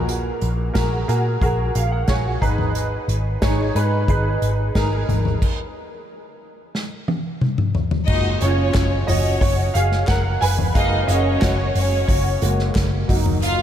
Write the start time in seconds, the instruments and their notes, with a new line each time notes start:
Already playing: picked electric bass A#1, grand piano A#2 F#4 G#4 A#4
0.09 closed hi-hat
0.41 picked electric bass A#1, closed hi-hat
0.74 picked electric bass A#1, grand piano F#4 G#4 A#4, kick, snare, closed hi-hat
1.08 picked electric bass A#2, grand piano F#4 G#4 A#4, closed hi-hat
1.41 picked electric bass A#1, grand piano F#4 G#4 A#4, kick, closed hi-hat
1.75 picked electric bass A#1, grand piano F5, closed hi-hat
1.92 grand piano F#5
2.08 picked electric bass A#1, grand piano F#4 G#4 C#5 G#5, kick, snare, closed hi-hat
2.41 picked electric bass G#1, grand piano D#4 G#4 B4 A#5, kick, closed hi-hat, floor tom
2.58 floor tom
2.75 closed hi-hat
3.08 picked electric bass G#1, closed hi-hat
3.42 picked electric bass G#1, grand piano D#4 G#4 C#5, kick, snare, closed hi-hat
3.75 picked electric bass G#2, grand piano D#4 G#4 B4, closed hi-hat
4.08 picked electric bass G#1, grand piano D#4 G#4 B4, kick, closed hi-hat
4.42 picked electric bass G#1, closed hi-hat
4.75 picked electric bass G#1, grand piano D#4 G#4 A#4, kick, snare, closed hi-hat
5.09 picked electric bass G#1, closed hi-hat, floor tom
5.25 floor tom
5.42 kick, crash
6.75 snare
7.08 high tom
7.41 mid tom
7.58 mid tom
7.75 floor tom
7.91 floor tom
8.07 picked electric bass F#1, grand piano A#2 G#3 F#4, violin section D#4 D#5, kick, crash
8.40 picked electric bass F#1, violin section C#4 C#5, grand piano F4 C#5, hi-hat pedal, open hi-hat
8.74 picked electric bass F#1, kick, snare, clap, hi-hat pedal, open hi-hat
9.07 picked electric bass F#1, violin section C#4 C#5, grand piano F#4 D#5, floor tom, hi-hat pedal, open hi-hat
9.41 picked electric bass F#1, grand piano F#4 C#5, kick, hi-hat pedal, open hi-hat
9.74 picked electric bass F#1, grand piano G#4 F5, hi-hat pedal, open hi-hat
9.92 snare
10.07 picked electric bass F#1, grand piano A#4 F#5, kick, snare, clap, hi-hat pedal, open hi-hat
10.41 picked electric bass F#1, grand piano B4 G#5, hi-hat pedal, open hi-hat
10.59 floor tom
10.75 picked electric bass F#1, grand piano G#3 A#3 F#4 G#4 F5, violin section D#4 D#5, kick, hi-hat pedal, open hi-hat
11.07 picked electric bass F#1, violin section C#4 C#5, grand piano F#4 D#5, hi-hat pedal, open hi-hat
11.40 picked electric bass F#1, grand piano F#4 C#5, kick, snare, clap, hi-hat pedal, open hi-hat
11.75 picked electric bass F#1, violin section C#4 C#5, hi-hat pedal, open hi-hat
12.07 picked electric bass F#1, grand piano F#4 C#5, kick, hi-hat pedal, open hi-hat
12.41 picked electric bass F#1, grand piano G#3 A#3 F#4, hi-hat pedal, open hi-hat
12.59 snare
12.75 picked electric bass F#1, kick, snare, clap, hi-hat pedal, open hi-hat
13.08 picked electric bass F#1, grand piano F#3 A#3 D#4, kick, hi-hat pedal, open hi-hat
13.26 floor tom
13.42 violin section F4 F5, hi-hat pedal, open hi-hat